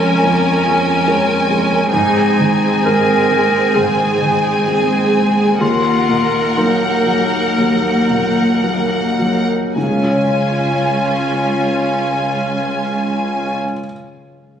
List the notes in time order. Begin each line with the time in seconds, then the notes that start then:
Already playing: F2 F3 G#3 A#3 C#4 G#4 A#4 C5 G#5
0.02 C#4
0.23 F2
0.43 A#3
0.65 F3 G#4
0.85 C#4
1.06 G#3 C#4 A#4 C5
1.27 C#4
1.48 G#3 C4
1.70 C#4
1.91 G#2 C4 D#4 G#4 G#5
2.14 G#3
2.38 D#3 G#4
2.60 C4
2.84 G#3 A#3 C4 G#4 A#4
3.07 C4
3.31 G#3
3.52 C4
3.75 G#2 D#3 G#4
3.97 G#3
4.21 D#3 G#4
4.43 C4
4.67 G#3 A#3 C4 G#4
4.90 C4
5.13 G#3 A#3
5.37 C4
5.60 D#2 D#3 A#3 F4 A#4 F#5
5.84 A#3
6.08 A#2 D#4
6.33 A#4
6.57 F#3 A#3 D#4 G#4 A#4
6.81 A#4
7.06 F#3 G#4
7.31 A#4
7.57 D#2 F#3
7.82 A#3
8.09 A#2 F#4
8.36 A#4
8.63 F#3 A#3 G#4 A#4
8.91 A#4
9.19 F#3 G#4
9.48 A#4
9.74 C#2 C#3 C#4 F4 G#5
9.82 C#3 G#3
9.89 G#3 C#4
9.96 C#4 F4
10.03 F4 C#5
10.11 C#5